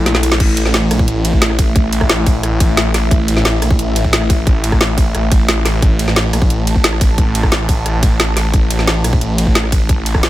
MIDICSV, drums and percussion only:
0, 0, Header, 1, 2, 480
1, 0, Start_track
1, 0, Tempo, 338983
1, 566, Time_signature, 4, 2, 24, 8
1, 14581, End_track
2, 0, Start_track
2, 0, Title_t, "Drums"
2, 88, Note_on_c, 9, 38, 62
2, 88, Note_on_c, 9, 42, 85
2, 208, Note_off_c, 9, 38, 0
2, 208, Note_on_c, 9, 38, 62
2, 229, Note_off_c, 9, 42, 0
2, 328, Note_on_c, 9, 42, 102
2, 328, Note_on_c, 9, 51, 78
2, 349, Note_off_c, 9, 38, 0
2, 448, Note_on_c, 9, 38, 90
2, 469, Note_off_c, 9, 42, 0
2, 469, Note_off_c, 9, 51, 0
2, 567, Note_on_c, 9, 36, 127
2, 568, Note_on_c, 9, 42, 84
2, 568, Note_on_c, 9, 49, 77
2, 590, Note_off_c, 9, 38, 0
2, 709, Note_off_c, 9, 36, 0
2, 710, Note_off_c, 9, 42, 0
2, 710, Note_off_c, 9, 49, 0
2, 808, Note_on_c, 9, 42, 97
2, 808, Note_on_c, 9, 51, 73
2, 928, Note_on_c, 9, 38, 38
2, 949, Note_off_c, 9, 42, 0
2, 949, Note_off_c, 9, 51, 0
2, 1048, Note_off_c, 9, 38, 0
2, 1048, Note_on_c, 9, 38, 121
2, 1048, Note_on_c, 9, 42, 84
2, 1189, Note_off_c, 9, 38, 0
2, 1189, Note_off_c, 9, 42, 0
2, 1288, Note_on_c, 9, 37, 51
2, 1288, Note_on_c, 9, 42, 99
2, 1288, Note_on_c, 9, 51, 75
2, 1407, Note_on_c, 9, 36, 112
2, 1429, Note_off_c, 9, 37, 0
2, 1429, Note_off_c, 9, 42, 0
2, 1429, Note_off_c, 9, 51, 0
2, 1527, Note_on_c, 9, 42, 84
2, 1549, Note_off_c, 9, 36, 0
2, 1669, Note_off_c, 9, 42, 0
2, 1767, Note_on_c, 9, 42, 101
2, 1767, Note_on_c, 9, 51, 75
2, 1887, Note_on_c, 9, 36, 63
2, 1909, Note_off_c, 9, 42, 0
2, 1909, Note_off_c, 9, 51, 0
2, 2007, Note_on_c, 9, 38, 117
2, 2007, Note_on_c, 9, 42, 85
2, 2029, Note_off_c, 9, 36, 0
2, 2127, Note_on_c, 9, 37, 36
2, 2148, Note_off_c, 9, 38, 0
2, 2148, Note_off_c, 9, 42, 0
2, 2247, Note_on_c, 9, 36, 107
2, 2247, Note_on_c, 9, 42, 99
2, 2247, Note_on_c, 9, 51, 74
2, 2269, Note_off_c, 9, 37, 0
2, 2389, Note_off_c, 9, 36, 0
2, 2389, Note_off_c, 9, 42, 0
2, 2389, Note_off_c, 9, 51, 0
2, 2487, Note_on_c, 9, 36, 125
2, 2487, Note_on_c, 9, 42, 79
2, 2629, Note_off_c, 9, 36, 0
2, 2629, Note_off_c, 9, 42, 0
2, 2727, Note_on_c, 9, 42, 94
2, 2727, Note_on_c, 9, 51, 71
2, 2847, Note_on_c, 9, 36, 65
2, 2847, Note_on_c, 9, 37, 57
2, 2869, Note_off_c, 9, 42, 0
2, 2869, Note_off_c, 9, 51, 0
2, 2967, Note_on_c, 9, 38, 126
2, 2967, Note_on_c, 9, 42, 84
2, 2989, Note_off_c, 9, 36, 0
2, 2989, Note_off_c, 9, 37, 0
2, 3108, Note_off_c, 9, 38, 0
2, 3108, Note_off_c, 9, 42, 0
2, 3207, Note_on_c, 9, 36, 114
2, 3207, Note_on_c, 9, 46, 75
2, 3207, Note_on_c, 9, 51, 71
2, 3348, Note_off_c, 9, 46, 0
2, 3348, Note_off_c, 9, 51, 0
2, 3349, Note_off_c, 9, 36, 0
2, 3447, Note_on_c, 9, 37, 37
2, 3447, Note_on_c, 9, 42, 82
2, 3588, Note_off_c, 9, 37, 0
2, 3588, Note_off_c, 9, 42, 0
2, 3687, Note_on_c, 9, 36, 120
2, 3687, Note_on_c, 9, 42, 97
2, 3687, Note_on_c, 9, 51, 73
2, 3829, Note_off_c, 9, 36, 0
2, 3829, Note_off_c, 9, 42, 0
2, 3829, Note_off_c, 9, 51, 0
2, 3927, Note_on_c, 9, 38, 123
2, 3927, Note_on_c, 9, 42, 81
2, 4069, Note_off_c, 9, 38, 0
2, 4069, Note_off_c, 9, 42, 0
2, 4167, Note_on_c, 9, 37, 36
2, 4167, Note_on_c, 9, 38, 39
2, 4167, Note_on_c, 9, 42, 97
2, 4167, Note_on_c, 9, 51, 74
2, 4309, Note_off_c, 9, 37, 0
2, 4309, Note_off_c, 9, 38, 0
2, 4309, Note_off_c, 9, 42, 0
2, 4309, Note_off_c, 9, 51, 0
2, 4407, Note_on_c, 9, 36, 127
2, 4408, Note_on_c, 9, 42, 77
2, 4549, Note_off_c, 9, 36, 0
2, 4549, Note_off_c, 9, 42, 0
2, 4647, Note_on_c, 9, 42, 93
2, 4647, Note_on_c, 9, 51, 74
2, 4768, Note_on_c, 9, 38, 39
2, 4789, Note_off_c, 9, 42, 0
2, 4789, Note_off_c, 9, 51, 0
2, 4888, Note_off_c, 9, 38, 0
2, 4888, Note_on_c, 9, 38, 127
2, 4888, Note_on_c, 9, 42, 77
2, 5029, Note_off_c, 9, 38, 0
2, 5029, Note_off_c, 9, 42, 0
2, 5128, Note_on_c, 9, 37, 50
2, 5128, Note_on_c, 9, 42, 92
2, 5128, Note_on_c, 9, 51, 75
2, 5247, Note_on_c, 9, 36, 123
2, 5270, Note_off_c, 9, 37, 0
2, 5270, Note_off_c, 9, 42, 0
2, 5270, Note_off_c, 9, 51, 0
2, 5368, Note_on_c, 9, 42, 82
2, 5389, Note_off_c, 9, 36, 0
2, 5509, Note_off_c, 9, 42, 0
2, 5608, Note_on_c, 9, 42, 91
2, 5608, Note_on_c, 9, 51, 71
2, 5727, Note_on_c, 9, 36, 67
2, 5749, Note_off_c, 9, 42, 0
2, 5749, Note_off_c, 9, 51, 0
2, 5848, Note_on_c, 9, 38, 126
2, 5848, Note_on_c, 9, 42, 77
2, 5868, Note_off_c, 9, 36, 0
2, 5967, Note_on_c, 9, 37, 34
2, 5989, Note_off_c, 9, 38, 0
2, 5989, Note_off_c, 9, 42, 0
2, 6087, Note_on_c, 9, 36, 112
2, 6087, Note_on_c, 9, 42, 94
2, 6087, Note_on_c, 9, 51, 69
2, 6109, Note_off_c, 9, 37, 0
2, 6228, Note_off_c, 9, 36, 0
2, 6229, Note_off_c, 9, 42, 0
2, 6229, Note_off_c, 9, 51, 0
2, 6327, Note_on_c, 9, 36, 127
2, 6327, Note_on_c, 9, 42, 74
2, 6468, Note_off_c, 9, 36, 0
2, 6469, Note_off_c, 9, 42, 0
2, 6567, Note_on_c, 9, 42, 90
2, 6567, Note_on_c, 9, 51, 75
2, 6687, Note_on_c, 9, 36, 67
2, 6687, Note_on_c, 9, 37, 54
2, 6709, Note_off_c, 9, 42, 0
2, 6709, Note_off_c, 9, 51, 0
2, 6807, Note_on_c, 9, 38, 123
2, 6807, Note_on_c, 9, 42, 75
2, 6828, Note_off_c, 9, 36, 0
2, 6829, Note_off_c, 9, 37, 0
2, 6949, Note_off_c, 9, 38, 0
2, 6949, Note_off_c, 9, 42, 0
2, 7047, Note_on_c, 9, 36, 114
2, 7047, Note_on_c, 9, 46, 80
2, 7047, Note_on_c, 9, 51, 74
2, 7188, Note_off_c, 9, 36, 0
2, 7188, Note_off_c, 9, 46, 0
2, 7188, Note_off_c, 9, 51, 0
2, 7287, Note_on_c, 9, 37, 37
2, 7287, Note_on_c, 9, 42, 78
2, 7429, Note_off_c, 9, 37, 0
2, 7429, Note_off_c, 9, 42, 0
2, 7527, Note_on_c, 9, 36, 120
2, 7527, Note_on_c, 9, 42, 91
2, 7527, Note_on_c, 9, 51, 73
2, 7668, Note_off_c, 9, 36, 0
2, 7669, Note_off_c, 9, 42, 0
2, 7669, Note_off_c, 9, 51, 0
2, 7767, Note_on_c, 9, 38, 127
2, 7767, Note_on_c, 9, 42, 75
2, 7909, Note_off_c, 9, 38, 0
2, 7909, Note_off_c, 9, 42, 0
2, 8007, Note_on_c, 9, 37, 33
2, 8007, Note_on_c, 9, 38, 39
2, 8007, Note_on_c, 9, 42, 92
2, 8007, Note_on_c, 9, 51, 74
2, 8149, Note_off_c, 9, 37, 0
2, 8149, Note_off_c, 9, 38, 0
2, 8149, Note_off_c, 9, 42, 0
2, 8149, Note_off_c, 9, 51, 0
2, 8247, Note_on_c, 9, 36, 123
2, 8247, Note_on_c, 9, 42, 76
2, 8388, Note_off_c, 9, 36, 0
2, 8389, Note_off_c, 9, 42, 0
2, 8487, Note_on_c, 9, 42, 90
2, 8487, Note_on_c, 9, 51, 77
2, 8607, Note_on_c, 9, 38, 37
2, 8629, Note_off_c, 9, 42, 0
2, 8629, Note_off_c, 9, 51, 0
2, 8727, Note_off_c, 9, 38, 0
2, 8727, Note_on_c, 9, 38, 124
2, 8727, Note_on_c, 9, 42, 76
2, 8869, Note_off_c, 9, 38, 0
2, 8869, Note_off_c, 9, 42, 0
2, 8968, Note_on_c, 9, 37, 46
2, 8968, Note_on_c, 9, 42, 92
2, 8968, Note_on_c, 9, 51, 76
2, 9087, Note_on_c, 9, 36, 115
2, 9109, Note_off_c, 9, 37, 0
2, 9109, Note_off_c, 9, 42, 0
2, 9109, Note_off_c, 9, 51, 0
2, 9208, Note_on_c, 9, 42, 78
2, 9228, Note_off_c, 9, 36, 0
2, 9350, Note_off_c, 9, 42, 0
2, 9448, Note_on_c, 9, 42, 92
2, 9448, Note_on_c, 9, 51, 77
2, 9567, Note_on_c, 9, 36, 62
2, 9589, Note_off_c, 9, 42, 0
2, 9589, Note_off_c, 9, 51, 0
2, 9687, Note_on_c, 9, 38, 121
2, 9687, Note_on_c, 9, 42, 76
2, 9709, Note_off_c, 9, 36, 0
2, 9808, Note_on_c, 9, 37, 33
2, 9829, Note_off_c, 9, 38, 0
2, 9829, Note_off_c, 9, 42, 0
2, 9927, Note_on_c, 9, 36, 109
2, 9928, Note_on_c, 9, 42, 95
2, 9928, Note_on_c, 9, 51, 76
2, 9949, Note_off_c, 9, 37, 0
2, 10068, Note_off_c, 9, 36, 0
2, 10069, Note_off_c, 9, 42, 0
2, 10069, Note_off_c, 9, 51, 0
2, 10167, Note_on_c, 9, 36, 115
2, 10167, Note_on_c, 9, 42, 76
2, 10308, Note_off_c, 9, 36, 0
2, 10309, Note_off_c, 9, 42, 0
2, 10407, Note_on_c, 9, 42, 94
2, 10407, Note_on_c, 9, 51, 79
2, 10527, Note_on_c, 9, 36, 62
2, 10528, Note_on_c, 9, 37, 54
2, 10549, Note_off_c, 9, 42, 0
2, 10549, Note_off_c, 9, 51, 0
2, 10647, Note_on_c, 9, 38, 116
2, 10647, Note_on_c, 9, 42, 81
2, 10668, Note_off_c, 9, 36, 0
2, 10669, Note_off_c, 9, 37, 0
2, 10789, Note_off_c, 9, 38, 0
2, 10789, Note_off_c, 9, 42, 0
2, 10887, Note_on_c, 9, 36, 107
2, 10887, Note_on_c, 9, 46, 84
2, 10887, Note_on_c, 9, 51, 78
2, 11028, Note_off_c, 9, 36, 0
2, 11028, Note_off_c, 9, 46, 0
2, 11028, Note_off_c, 9, 51, 0
2, 11127, Note_on_c, 9, 37, 36
2, 11127, Note_on_c, 9, 42, 83
2, 11269, Note_off_c, 9, 37, 0
2, 11269, Note_off_c, 9, 42, 0
2, 11367, Note_on_c, 9, 36, 109
2, 11367, Note_on_c, 9, 42, 95
2, 11367, Note_on_c, 9, 51, 76
2, 11508, Note_off_c, 9, 36, 0
2, 11509, Note_off_c, 9, 42, 0
2, 11509, Note_off_c, 9, 51, 0
2, 11607, Note_on_c, 9, 38, 116
2, 11607, Note_on_c, 9, 42, 82
2, 11749, Note_off_c, 9, 38, 0
2, 11749, Note_off_c, 9, 42, 0
2, 11847, Note_on_c, 9, 37, 31
2, 11847, Note_on_c, 9, 38, 35
2, 11847, Note_on_c, 9, 42, 92
2, 11847, Note_on_c, 9, 51, 81
2, 11989, Note_off_c, 9, 37, 0
2, 11989, Note_off_c, 9, 38, 0
2, 11989, Note_off_c, 9, 42, 0
2, 11989, Note_off_c, 9, 51, 0
2, 12087, Note_on_c, 9, 36, 115
2, 12087, Note_on_c, 9, 42, 80
2, 12228, Note_off_c, 9, 36, 0
2, 12228, Note_off_c, 9, 42, 0
2, 12327, Note_on_c, 9, 42, 100
2, 12327, Note_on_c, 9, 51, 77
2, 12447, Note_on_c, 9, 38, 35
2, 12468, Note_off_c, 9, 42, 0
2, 12468, Note_off_c, 9, 51, 0
2, 12567, Note_off_c, 9, 38, 0
2, 12567, Note_on_c, 9, 38, 114
2, 12567, Note_on_c, 9, 42, 84
2, 12709, Note_off_c, 9, 38, 0
2, 12709, Note_off_c, 9, 42, 0
2, 12807, Note_on_c, 9, 37, 47
2, 12807, Note_on_c, 9, 42, 102
2, 12807, Note_on_c, 9, 51, 83
2, 12927, Note_on_c, 9, 36, 106
2, 12949, Note_off_c, 9, 37, 0
2, 12949, Note_off_c, 9, 42, 0
2, 12949, Note_off_c, 9, 51, 0
2, 13047, Note_on_c, 9, 42, 85
2, 13068, Note_off_c, 9, 36, 0
2, 13188, Note_off_c, 9, 42, 0
2, 13287, Note_on_c, 9, 42, 100
2, 13287, Note_on_c, 9, 51, 80
2, 13407, Note_on_c, 9, 36, 60
2, 13428, Note_off_c, 9, 42, 0
2, 13428, Note_off_c, 9, 51, 0
2, 13527, Note_on_c, 9, 38, 117
2, 13527, Note_on_c, 9, 42, 79
2, 13548, Note_off_c, 9, 36, 0
2, 13648, Note_on_c, 9, 37, 35
2, 13669, Note_off_c, 9, 38, 0
2, 13669, Note_off_c, 9, 42, 0
2, 13767, Note_on_c, 9, 36, 100
2, 13767, Note_on_c, 9, 42, 100
2, 13767, Note_on_c, 9, 51, 78
2, 13789, Note_off_c, 9, 37, 0
2, 13908, Note_off_c, 9, 36, 0
2, 13909, Note_off_c, 9, 42, 0
2, 13909, Note_off_c, 9, 51, 0
2, 14007, Note_on_c, 9, 36, 116
2, 14008, Note_on_c, 9, 42, 81
2, 14148, Note_off_c, 9, 36, 0
2, 14149, Note_off_c, 9, 42, 0
2, 14247, Note_on_c, 9, 42, 98
2, 14247, Note_on_c, 9, 51, 77
2, 14367, Note_on_c, 9, 36, 63
2, 14367, Note_on_c, 9, 37, 57
2, 14389, Note_off_c, 9, 42, 0
2, 14389, Note_off_c, 9, 51, 0
2, 14487, Note_on_c, 9, 38, 120
2, 14487, Note_on_c, 9, 42, 88
2, 14508, Note_off_c, 9, 36, 0
2, 14509, Note_off_c, 9, 37, 0
2, 14581, Note_off_c, 9, 38, 0
2, 14581, Note_off_c, 9, 42, 0
2, 14581, End_track
0, 0, End_of_file